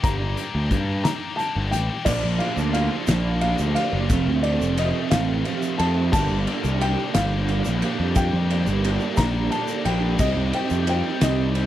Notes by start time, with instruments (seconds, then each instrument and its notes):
0.03 picked electric bass G1, clean electric guitar G2 D3, distorted electric guitar G3 A#3 D4 G4, upright piano A#5, kick, closed hi-hat
0.37 clean electric guitar G2 D3, distorted electric guitar G3 A#3 D4 G4, closed hi-hat
0.55 picked electric bass D2
0.70 clean electric guitar G2 D3, picked electric bass G2, distorted electric guitar G3 A#3 D4 G4, kick, closed hi-hat
1.04 clean electric guitar G2 D3, distorted electric guitar G3 A#3 D4 G4, upright piano A#5, snare, closed hi-hat
1.36 clean electric guitar G2 D3, distorted electric guitar G3 A#3 D4 G4, upright piano A5, closed hi-hat
1.56 picked electric bass G1
1.71 picked electric bass A1, clean electric guitar G2 D3, distorted electric guitar G3 A#3 D4 G4, upright piano G5, closed hi-hat
2.05 picked electric bass A#1, distorted electric guitar A#2 D3 A#3 D4 F4, clean electric guitar F3, upright piano D5, kick, crash, shaker
2.24 picked electric bass A#1
2.39 distorted electric guitar A#2 D3 A#3 D4 F4, clean electric guitar F3, upright piano F5, ride
2.57 picked electric bass D2, shaker
2.73 distorted electric guitar A#2 D3 A#3 D4 F4, clean electric guitar F3, upright piano F5, ride
3.07 picked electric bass A#1, distorted electric guitar A#2 D3 A#3 D4 F4, clean electric guitar F3, snare, ride, shaker
3.41 distorted electric guitar A#2 D3 A#3 D4 F4, clean electric guitar F3, upright piano F5, ride, shaker
3.58 picked electric bass D2, shaker
3.75 distorted electric guitar A#2 D3 A#3 D4 F4, clean electric guitar F3, upright piano F5, ride
3.93 picked electric bass F#1
4.10 picked electric bass F1, distorted electric guitar F2 C3 F3 A3 C4 F4, kick, ride, shaker
4.27 picked electric bass D2
4.43 distorted electric guitar F2 C3 F3 A3 C4 F4, upright piano D5, ride
4.61 picked electric bass F1, shaker
4.77 distorted electric guitar F2 C3 F3 A3 C4 F4, upright piano D#5, ride
5.10 picked electric bass A1, distorted electric guitar F2 C3 F3 A3 C4 F4, upright piano F5, snare, ride, shaker
5.45 distorted electric guitar F2 C3 F3 A3 C4 F4, ride, shaker
5.62 shaker
5.78 distorted electric guitar F2 C3 F3 A3 C4 F4, picked electric bass F2, upright piano A5, ride
6.12 picked electric bass G1, distorted electric guitar G2 D3 G3 A#3 D4 G4, upright piano A5, kick, crash, shaker
6.31 picked electric bass G1
6.47 distorted electric guitar G2 D3 G3 A#3 D4 G4, ride
6.64 picked electric bass C2, shaker
6.81 distorted electric guitar G2 D3 G3 A#3 D4 G4, upright piano G5, ride
7.14 picked electric bass G1, distorted electric guitar G2 D3 G3 A#3 D4 G4, upright piano F5, snare, ride, shaker
7.48 distorted electric guitar G2 D3 G3 A#3 D4 G4, ride, shaker
7.65 picked electric bass A#1, shaker
7.82 distorted electric guitar G2 D3 G3 A#3 D4 G4, ride
8.00 picked electric bass F2
8.15 distorted electric guitar G2 D3 G3 A#3 D4 G4, upright piano G5, kick, ride, shaker
8.33 picked electric bass F2
8.50 distorted electric guitar G2 D3 G3 A#3 D4 G4, ride
8.67 picked electric bass G1, shaker
8.84 distorted electric guitar G2 D3 G3 A#3 D4 G4, ride
9.00 shaker
9.17 picked electric bass A#1, distorted electric guitar G2 D3 G3 A#3 D4 G4, upright piano A#5, kick, snare, ride, shaker
9.50 distorted electric guitar G2 D3 G3 A#3 D4 G4, upright piano A5, ride, shaker
9.68 shaker
9.85 picked electric bass A#1, distorted electric guitar G2 D3 G3 A#3 D4 G4, upright piano G5, ride
10.18 picked electric bass C2, distorted electric guitar C3 D#3 G3 C4, analog synth pad D#4 G4 C5 G5, clean electric guitar D#4, upright piano D#5, kick, crash, shaker
10.23 distorted electric guitar G4
10.36 picked electric bass C2
10.53 distorted electric guitar C3 D#3 G3 C4 G4, clean electric guitar D#4, upright piano G5, ride
10.70 picked electric bass F2, shaker
10.87 distorted electric guitar C3 D#3 G3 C4 G4, clean electric guitar D#4, upright piano G5, ride
11.21 picked electric bass C2, distorted electric guitar C3 D#3 G3 C4 G4, clean electric guitar D#4, upright piano D#5, snare, ride, shaker
11.55 distorted electric guitar C3 D#3 G3 C4 G4, clean electric guitar D#4, ride, shaker